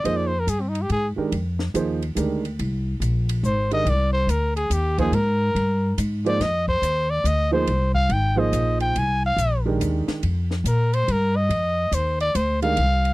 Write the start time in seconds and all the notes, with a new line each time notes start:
0.04 F2 F3 A#3 D#4 G#4 C5 D#5, ride
0.17 D5
0.27 C5
0.40 A#4
0.47 G2 G#4, hi-hat pedal, ride
0.61 C4
0.69 D#4
0.75 ride
0.81 G4
0.90 G#2 G#4, ride
1.16 D#3 G#3 D4 G4 A#4, muted upright bass stroke
1.32 F2, ride
1.59 snare
1.74 D#2 F3 A#3 D#4 G#4 C5, hi-hat pedal, ride
2.02 ride
2.15 D2 D#3 G#3 D4 G4 A#4, hi-hat pedal, ride
2.45 ride
2.59 C2, ride
3.00 A#1, hi-hat pedal, ride
3.29 ride
3.43 G#1 C5, hi-hat pedal
3.71 D#3 G#3 D4 G4 A#4 D#5, ride
3.85 C2, ride
3.90 D5
4.13 C5
4.27 D2 A#4, hi-hat pedal, ride
4.56 G#4, ride
4.70 D#2 G4, hi-hat pedal, ride
4.98 F3 A#3 D#4 G#4 C5, kick, ride
5.12 G#2 A#4, ride
5.55 G2, ride
5.98 G#2, hi-hat pedal, ride
6.25 F3 A#3 D#4 G#4 C5 D5, ride
6.40 F2 D#5, snare, ride
6.68 C5, kick
6.82 D#2, hi-hat pedal, ride
7.10 D5
7.24 D2 D#5, hi-hat pedal, ride
7.51 F3 A#3 D#4 G#4 C5
7.67 C2, ride
7.95 F5, kick
8.09 G#1 G5, ride
8.36 F3 A#3 D#4 G#4 C5 D#5
8.52 A#1, hi-hat pedal, ride
8.80 G5, ride
8.96 C2 G#5, ride
9.26 F5
9.37 A#1, hi-hat pedal, ride
9.65 D#3 G#3 D4 G4 A#4
9.80 D#2, hi-hat pedal, ride
10.08 muted upright bass stroke, snare, ride
10.23 F2, ride
10.51 snare
10.64 A#2 A#4, hi-hat pedal, ride
10.93 C5, ride
11.08 G2 A#4, ride
11.36 D#5
11.49 F2, ride
11.92 D#2 C5, hi-hat pedal, ride
12.20 D5, ride
12.35 D2 C5, hi-hat pedal, ride
12.62 D#3 G#3 D4 G4 A#4 F5, ride
12.77 C2, ride
13.05 ride